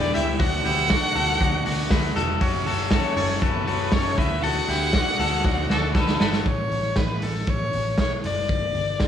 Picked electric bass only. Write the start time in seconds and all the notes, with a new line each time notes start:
0.15 C#2
0.40 D2
0.65 D2
1.15 D2
1.41 D2
1.66 D2
1.91 D2
2.16 E1
2.41 F#1
2.66 F#1
3.17 F#1
3.42 F#1
3.67 F#1
3.92 F#1
4.18 D2
4.69 D2
5.19 D2
5.45 D2
5.71 D2
5.95 D2
6.21 G1
6.46 A1
6.71 A1
6.97 A1
7.22 A1
7.48 A1
7.74 A1
7.98 B1
8.25 F#1
8.49 G1
8.75 G1
9.01 G1